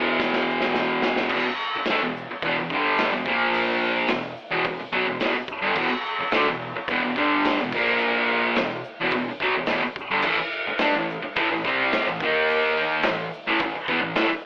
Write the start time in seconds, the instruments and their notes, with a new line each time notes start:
Already playing: distorted electric guitar E2 B2 E3
0.08 shaker
0.20 kick, snare, shaker
0.33 snare
0.37 shaker
0.50 shaker
0.61 snare, shaker
0.74 snare, shaker
0.91 shaker
1.02 snare, shaker
1.16 snare, shaker
1.29 distorted electric guitar E2 B2, kick, crash, shaker
1.47 muted distorted electric guitar stroke
1.60 shaker
1.76 muted distorted electric guitar stroke
1.85 snare, open hi-hat, shaker
1.90 distorted electric guitar D3 A3
2.02 distorted electric guitar E2 B2
2.17 shaker
2.31 muted distorted electric guitar stroke
2.42 distorted electric guitar E2 B2, kick, open hi-hat, shaker
2.59 distorted electric guitar E2 B2
2.69 distorted electric guitar G2, kick, shaker
2.74 distorted electric guitar D3 G3
2.97 snare, open hi-hat, shaker
3.13 distorted electric guitar E2 B2
3.25 distorted electric guitar A#2 F3, kick, shaker
3.29 distorted electric guitar A#3
3.53 open hi-hat, shaker
3.82 shaker
4.08 distorted electric guitar E2 B2, snare, open hi-hat, shaker
4.37 shaker
4.51 distorted electric guitar E2 B2
4.64 distorted electric guitar E2 B2, kick, open hi-hat, shaker
4.80 muted distorted electric guitar stroke
4.92 distorted electric guitar B2 F#3, kick, shaker
5.07 distorted electric guitar E2 B2
5.20 distorted electric guitar E2 B2, snare, open hi-hat, shaker
5.34 muted distorted electric guitar stroke
5.48 kick, shaker
5.61 distorted electric guitar G2 D3
5.75 distorted electric guitar E2 B2, kick, crash, shaker
5.91 muted distorted electric guitar stroke
6.05 shaker
6.20 muted distorted electric guitar stroke
6.31 distorted electric guitar D3 A3, snare, open hi-hat, shaker
6.49 distorted electric guitar E2 B2
6.76 muted distorted electric guitar stroke
6.88 distorted electric guitar E2 B2, kick, open hi-hat, shaker
7.04 distorted electric guitar E2 B2
7.16 distorted electric guitar G2 D3 G3, kick, shaker
7.43 snare, open hi-hat, shaker
7.61 distorted electric guitar E2 B2
7.71 distorted electric guitar A#2, kick, crash, shaker
7.75 distorted electric guitar F3 A#3
7.99 shaker
8.28 shaker
8.55 distorted electric guitar E2 B2, snare, open hi-hat, shaker
8.84 shaker
9.00 distorted electric guitar E2 B2
9.11 distorted electric guitar E2 B2, kick, open hi-hat, shaker
9.29 muted distorted electric guitar stroke
9.40 distorted electric guitar B2 F#3, kick, shaker
9.55 distorted electric guitar E2 B2
9.66 distorted electric guitar E2, snare, open hi-hat, shaker
9.70 distorted electric guitar B2
9.84 muted distorted electric guitar stroke
9.96 kick, shaker
10.11 distorted electric guitar G2 D3
10.22 distorted electric guitar A2 E3, kick, crash, shaker
10.39 muted distorted electric guitar stroke
10.51 shaker
10.68 muted distorted electric guitar stroke
10.78 distorted electric guitar G3 D4, snare, open hi-hat, shaker
10.96 distorted electric guitar A2 E3
11.10 shaker
11.23 muted distorted electric guitar stroke
11.36 distorted electric guitar A2 E3, kick, open hi-hat, shaker
11.51 distorted electric guitar A2 E3
11.64 distorted electric guitar C3 G3 C4, kick, shaker
11.92 snare, open hi-hat, shaker
12.08 distorted electric guitar A2 E3
12.20 distorted electric guitar D#3 A#3, kick, shaker
12.25 distorted electric guitar D#4
12.48 open hi-hat, shaker
12.77 shaker
13.03 distorted electric guitar A2, snare, open hi-hat, shaker
13.07 distorted electric guitar E3
13.33 shaker
13.47 distorted electric guitar A2 E3
13.59 distorted electric guitar A2 E3, kick, open hi-hat, shaker
13.75 muted distorted electric guitar stroke
13.88 distorted electric guitar E3 B3, kick, shaker
14.01 distorted electric guitar A2 E3
14.15 distorted electric guitar A2 E3, snare, open hi-hat, shaker
14.29 muted distorted electric guitar stroke